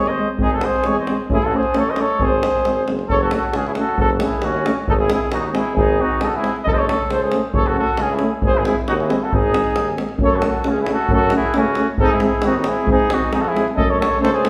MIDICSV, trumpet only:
0, 0, Header, 1, 2, 480
1, 0, Start_track
1, 0, Tempo, 445765
1, 425, Time_signature, 2, 2, 24, 8
1, 15608, End_track
2, 0, Start_track
2, 0, Title_t, "Trumpet"
2, 0, Program_c, 0, 56
2, 0, Note_on_c, 0, 68, 68
2, 101, Note_on_c, 0, 72, 68
2, 117, Note_off_c, 0, 68, 0
2, 324, Note_off_c, 0, 72, 0
2, 462, Note_on_c, 0, 63, 76
2, 558, Note_off_c, 0, 63, 0
2, 607, Note_on_c, 0, 66, 66
2, 705, Note_on_c, 0, 68, 73
2, 721, Note_off_c, 0, 66, 0
2, 961, Note_off_c, 0, 68, 0
2, 961, Note_on_c, 0, 68, 79
2, 1056, Note_off_c, 0, 68, 0
2, 1076, Note_on_c, 0, 72, 60
2, 1278, Note_off_c, 0, 72, 0
2, 1431, Note_on_c, 0, 64, 72
2, 1571, Note_on_c, 0, 66, 70
2, 1587, Note_off_c, 0, 64, 0
2, 1686, Note_on_c, 0, 68, 72
2, 1702, Note_off_c, 0, 66, 0
2, 1899, Note_off_c, 0, 68, 0
2, 1905, Note_on_c, 0, 69, 77
2, 2051, Note_on_c, 0, 72, 57
2, 2067, Note_off_c, 0, 69, 0
2, 2159, Note_on_c, 0, 69, 73
2, 2175, Note_off_c, 0, 72, 0
2, 2385, Note_on_c, 0, 68, 70
2, 2401, Note_off_c, 0, 69, 0
2, 3091, Note_off_c, 0, 68, 0
2, 3328, Note_on_c, 0, 69, 83
2, 3436, Note_off_c, 0, 69, 0
2, 3462, Note_on_c, 0, 66, 63
2, 3562, Note_off_c, 0, 66, 0
2, 3576, Note_on_c, 0, 66, 65
2, 3834, Note_on_c, 0, 61, 66
2, 3850, Note_off_c, 0, 66, 0
2, 3937, Note_off_c, 0, 61, 0
2, 3949, Note_on_c, 0, 64, 57
2, 3996, Note_off_c, 0, 64, 0
2, 4061, Note_on_c, 0, 66, 70
2, 4274, Note_off_c, 0, 66, 0
2, 4327, Note_on_c, 0, 66, 71
2, 4424, Note_off_c, 0, 66, 0
2, 4570, Note_on_c, 0, 64, 66
2, 4801, Note_on_c, 0, 61, 75
2, 4817, Note_off_c, 0, 64, 0
2, 5142, Note_off_c, 0, 61, 0
2, 5272, Note_on_c, 0, 63, 86
2, 5320, Note_off_c, 0, 63, 0
2, 5384, Note_on_c, 0, 64, 59
2, 5485, Note_off_c, 0, 64, 0
2, 5504, Note_on_c, 0, 64, 76
2, 5607, Note_off_c, 0, 64, 0
2, 5746, Note_on_c, 0, 63, 78
2, 5768, Note_off_c, 0, 63, 0
2, 5808, Note_on_c, 0, 63, 79
2, 5856, Note_off_c, 0, 63, 0
2, 5884, Note_on_c, 0, 63, 61
2, 5976, Note_off_c, 0, 63, 0
2, 5993, Note_on_c, 0, 64, 77
2, 6202, Note_off_c, 0, 64, 0
2, 6225, Note_on_c, 0, 63, 75
2, 6466, Note_off_c, 0, 63, 0
2, 6466, Note_on_c, 0, 63, 69
2, 6700, Note_off_c, 0, 63, 0
2, 6700, Note_on_c, 0, 63, 75
2, 6735, Note_on_c, 0, 66, 60
2, 6751, Note_off_c, 0, 63, 0
2, 6845, Note_on_c, 0, 64, 80
2, 6861, Note_off_c, 0, 66, 0
2, 7050, Note_off_c, 0, 64, 0
2, 7193, Note_on_c, 0, 69, 98
2, 7211, Note_off_c, 0, 69, 0
2, 7211, Note_on_c, 0, 69, 78
2, 7252, Note_on_c, 0, 72, 73
2, 7268, Note_off_c, 0, 69, 0
2, 7298, Note_on_c, 0, 69, 78
2, 7315, Note_off_c, 0, 72, 0
2, 7408, Note_off_c, 0, 69, 0
2, 7415, Note_on_c, 0, 69, 87
2, 7657, Note_off_c, 0, 69, 0
2, 7657, Note_on_c, 0, 69, 76
2, 7768, Note_off_c, 0, 69, 0
2, 7775, Note_on_c, 0, 68, 59
2, 7994, Note_off_c, 0, 68, 0
2, 8141, Note_on_c, 0, 69, 89
2, 8259, Note_on_c, 0, 66, 70
2, 8275, Note_off_c, 0, 69, 0
2, 8372, Note_off_c, 0, 66, 0
2, 8383, Note_on_c, 0, 66, 85
2, 8620, Note_on_c, 0, 61, 74
2, 8636, Note_off_c, 0, 66, 0
2, 8731, Note_off_c, 0, 61, 0
2, 8738, Note_on_c, 0, 64, 60
2, 8956, Note_off_c, 0, 64, 0
2, 9095, Note_on_c, 0, 68, 81
2, 9203, Note_on_c, 0, 64, 68
2, 9220, Note_off_c, 0, 68, 0
2, 9318, Note_off_c, 0, 64, 0
2, 9325, Note_on_c, 0, 64, 74
2, 9433, Note_off_c, 0, 64, 0
2, 9576, Note_on_c, 0, 63, 80
2, 9628, Note_off_c, 0, 63, 0
2, 9697, Note_on_c, 0, 64, 57
2, 9946, Note_on_c, 0, 66, 68
2, 9962, Note_off_c, 0, 64, 0
2, 10032, Note_off_c, 0, 66, 0
2, 10039, Note_on_c, 0, 63, 77
2, 10717, Note_off_c, 0, 63, 0
2, 11033, Note_on_c, 0, 69, 77
2, 11170, Note_on_c, 0, 66, 65
2, 11187, Note_off_c, 0, 69, 0
2, 11265, Note_off_c, 0, 66, 0
2, 11276, Note_on_c, 0, 66, 63
2, 11507, Note_on_c, 0, 61, 73
2, 11523, Note_off_c, 0, 66, 0
2, 11614, Note_off_c, 0, 61, 0
2, 11644, Note_on_c, 0, 64, 59
2, 11735, Note_off_c, 0, 64, 0
2, 11773, Note_on_c, 0, 66, 77
2, 11971, Note_off_c, 0, 66, 0
2, 11998, Note_on_c, 0, 66, 84
2, 12203, Note_off_c, 0, 66, 0
2, 12236, Note_on_c, 0, 64, 86
2, 12469, Note_on_c, 0, 61, 75
2, 12485, Note_off_c, 0, 64, 0
2, 12813, Note_off_c, 0, 61, 0
2, 12940, Note_on_c, 0, 63, 97
2, 13071, Note_on_c, 0, 64, 72
2, 13088, Note_off_c, 0, 63, 0
2, 13170, Note_off_c, 0, 64, 0
2, 13176, Note_on_c, 0, 64, 75
2, 13433, Note_on_c, 0, 63, 75
2, 13449, Note_off_c, 0, 64, 0
2, 13530, Note_off_c, 0, 63, 0
2, 13536, Note_on_c, 0, 63, 62
2, 13660, Note_on_c, 0, 64, 67
2, 13676, Note_off_c, 0, 63, 0
2, 13886, Note_off_c, 0, 64, 0
2, 13906, Note_on_c, 0, 63, 76
2, 14131, Note_off_c, 0, 63, 0
2, 14131, Note_on_c, 0, 63, 77
2, 14354, Note_off_c, 0, 63, 0
2, 14360, Note_on_c, 0, 63, 80
2, 14447, Note_on_c, 0, 66, 76
2, 14463, Note_off_c, 0, 63, 0
2, 14516, Note_on_c, 0, 64, 81
2, 14532, Note_off_c, 0, 66, 0
2, 14718, Note_off_c, 0, 64, 0
2, 14816, Note_on_c, 0, 69, 85
2, 14951, Note_off_c, 0, 69, 0
2, 14951, Note_on_c, 0, 69, 68
2, 15069, Note_off_c, 0, 69, 0
2, 15075, Note_on_c, 0, 69, 82
2, 15304, Note_off_c, 0, 69, 0
2, 15304, Note_on_c, 0, 69, 98
2, 15426, Note_off_c, 0, 69, 0
2, 15431, Note_on_c, 0, 68, 73
2, 15608, Note_off_c, 0, 68, 0
2, 15608, End_track
0, 0, End_of_file